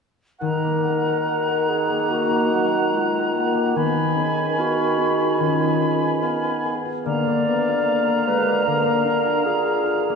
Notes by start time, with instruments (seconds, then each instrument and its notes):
0.40 bassoon D#3, harp D#3, clarinet A#4, oboe F#5, flute A#5
0.64 harp A#3
0.85 harp A#4
1.06 harp F#4
1.28 harp F#5
1.48 harp A#4
1.69 harp F#4, clarinet G#4
1.89 harp A#3
2.10 french horn section A#3, harp D#4, clarinet F#4
2.30 harp A#3
2.51 french horn section F#3, harp A#4
2.72 harp F#4
2.93 french horn section G#3, clarinet F4, harp F#5
3.13 harp A#4
3.34 french horn section A#3, harp F#4
3.55 harp A#3
3.75 harp D#3, bassoon D#3, french horn section B3, clarinet D#4, oboe G#5, flute B5
3.96 harp B3
4.16 french horn section C#4, harp G#4
4.38 harp B4
4.57 french horn section B3, clarinet F#4, harp F5
4.79 harp B4
4.98 french horn section D#4, harp G#4
5.20 harp F4
5.39 harp D#3, french horn section C#4, clarinet F4
5.61 harp B3
5.80 harp G#4
6.02 harp B4
6.22 french horn section B3, harp F5
6.44 harp B4
6.65 harp G#4
6.85 harp F4
7.05 bassoon D3, harp D3, french horn section A#3, clarinet D5, oboe F5, flute A#5
7.27 harp A#3
7.46 french horn section B3, harp A#4
7.68 harp F4
7.86 french horn section A#3, harp F5
8.08 harp A#4
8.26 french horn section G#3, harp F4, clarinet B4
8.47 harp A#3
8.65 harp D3, french horn section A#3, clarinet A#4
8.86 harp D4
9.06 french horn section D4, harp A#4
9.26 harp F4
9.45 french horn section F4, clarinet G#4, harp F5
9.67 harp A#4
9.87 harp F4
10.09 harp A#3